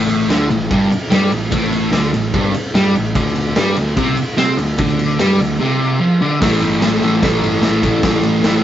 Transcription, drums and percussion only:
0.09 ride
0.30 snare, ride
0.51 ride
0.71 kick, ride
0.92 ride
1.12 snare, ride
1.32 ride
1.52 kick, ride
1.73 ride
1.93 snare, ride
2.14 ride
2.34 kick, ride
2.54 ride
2.75 snare, ride
2.95 ride
3.15 kick, ride
3.36 ride
3.56 snare, ride
3.77 ride
3.97 kick, ride
4.17 ride
4.38 snare, ride
4.58 ride
4.78 kick, ride
4.99 ride
5.19 snare, ride
5.40 ride
6.42 kick, snare, crash
6.62 ride
6.82 snare, ride
7.03 ride
7.23 kick, snare, ride
7.44 ride
7.63 snare, ride
7.83 kick, ride
8.03 kick, snare, ride
8.23 ride
8.44 snare, ride

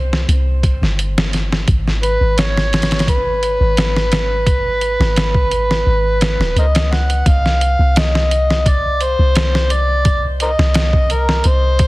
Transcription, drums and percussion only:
0.13 snare
0.29 closed hi-hat
0.63 kick, closed hi-hat
0.83 snare
0.99 closed hi-hat
1.18 snare
1.33 snare, closed hi-hat
1.52 snare
1.68 kick, closed hi-hat
1.88 snare
2.03 closed hi-hat
2.38 snare, closed hi-hat
2.57 snare
2.73 snare, closed hi-hat
2.82 snare, closed hi-hat
2.91 snare, closed hi-hat
2.99 snare, closed hi-hat
3.07 kick, closed hi-hat
3.43 closed hi-hat
3.77 snare, closed hi-hat
3.97 snare
4.12 snare, closed hi-hat
4.47 kick, closed hi-hat
4.81 closed hi-hat
5.01 snare
5.16 snare, closed hi-hat
5.34 kick
5.51 closed hi-hat
5.71 snare
6.21 snare, closed hi-hat
6.41 snare
6.57 closed hi-hat
6.75 snare, closed hi-hat
6.93 snare
7.10 closed hi-hat
7.26 kick, closed hi-hat
7.46 snare
7.61 closed hi-hat
7.96 snare, closed hi-hat
8.15 snare
8.31 closed hi-hat
8.50 snare
8.66 kick, closed hi-hat
9.01 closed hi-hat
9.35 snare, closed hi-hat
9.55 snare
9.70 closed hi-hat
10.05 kick, closed hi-hat
10.40 closed hi-hat
10.59 snare
10.74 snare, closed hi-hat
10.93 kick
11.10 closed hi-hat
11.29 snare
11.44 closed hi-hat
11.79 kick, closed hi-hat

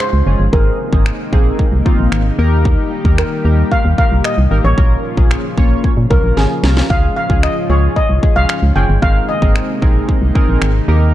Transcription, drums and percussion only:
0.00 finger snap
0.53 kick
0.93 kick
1.06 finger snap
1.33 kick
1.59 kick
1.86 kick
2.12 finger snap
2.65 kick
3.05 kick
3.18 finger snap
3.71 kick
3.98 kick
4.24 finger snap
4.78 kick
5.17 kick
5.31 finger snap
5.58 kick
5.84 kick
6.11 kick
6.37 snare
6.64 snare
6.77 snare
6.90 kick
7.30 kick
7.43 finger snap
7.96 kick
8.23 kick
8.49 finger snap
9.02 kick
9.42 kick
9.56 finger snap
9.82 kick
10.09 kick
10.35 kick
10.62 finger snap

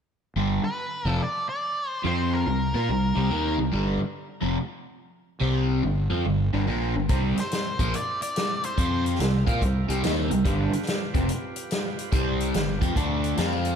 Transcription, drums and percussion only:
7.09 kick, closed hi-hat
7.37 snare, closed hi-hat
7.51 snare, closed hi-hat
7.79 kick, closed hi-hat
7.94 closed hi-hat
8.22 closed hi-hat
8.36 snare, closed hi-hat
8.63 closed hi-hat
8.78 kick, closed hi-hat
9.06 closed hi-hat
9.15 snare
9.20 snare, closed hi-hat
9.47 kick, closed hi-hat
9.62 kick, closed hi-hat
9.90 closed hi-hat
10.04 snare, closed hi-hat
10.31 closed hi-hat
10.45 kick, closed hi-hat
10.73 closed hi-hat
10.82 snare
10.87 snare, closed hi-hat
11.15 kick, closed hi-hat
11.29 closed hi-hat
11.56 closed hi-hat
11.71 snare, closed hi-hat
11.99 closed hi-hat
12.12 kick, closed hi-hat
12.40 closed hi-hat
12.54 snare, closed hi-hat
12.82 kick, closed hi-hat
12.96 kick, closed hi-hat
13.24 closed hi-hat
13.37 snare, closed hi-hat
13.65 closed hi-hat

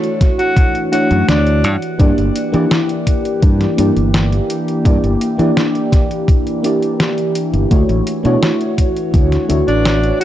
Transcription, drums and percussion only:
0.04 closed hi-hat
0.21 kick, snare, closed hi-hat
0.39 closed hi-hat
0.57 kick, closed hi-hat
0.75 closed hi-hat
0.93 closed hi-hat
1.11 closed hi-hat
1.28 snare, closed hi-hat
1.47 closed hi-hat
1.64 closed hi-hat
1.82 closed hi-hat
2.00 kick, closed hi-hat
2.18 closed hi-hat
2.36 closed hi-hat
2.54 closed hi-hat
2.71 snare, closed hi-hat
2.89 closed hi-hat
3.07 kick, closed hi-hat
3.25 closed hi-hat
3.42 kick, closed hi-hat
3.61 snare, closed hi-hat
3.78 closed hi-hat
3.97 closed hi-hat
4.14 snare, closed hi-hat
4.32 closed hi-hat
4.50 closed hi-hat
4.68 closed hi-hat
4.85 kick, closed hi-hat
5.04 closed hi-hat
5.21 closed hi-hat
5.39 closed hi-hat
5.57 snare, closed hi-hat
5.75 closed hi-hat
5.92 kick, snare, closed hi-hat
6.11 closed hi-hat
6.28 kick, closed hi-hat
6.47 closed hi-hat
6.64 closed hi-hat
6.82 closed hi-hat
7.00 snare, closed hi-hat
7.18 closed hi-hat
7.35 closed hi-hat
7.54 closed hi-hat
7.71 kick, closed hi-hat
7.89 closed hi-hat
8.07 closed hi-hat
8.25 closed hi-hat
8.43 snare, closed hi-hat
8.61 closed hi-hat
8.78 kick, closed hi-hat
8.96 closed hi-hat
9.14 kick, closed hi-hat
9.32 snare, closed hi-hat
9.50 closed hi-hat
9.68 closed hi-hat
9.85 snare, closed hi-hat
10.03 closed hi-hat
10.21 closed hi-hat

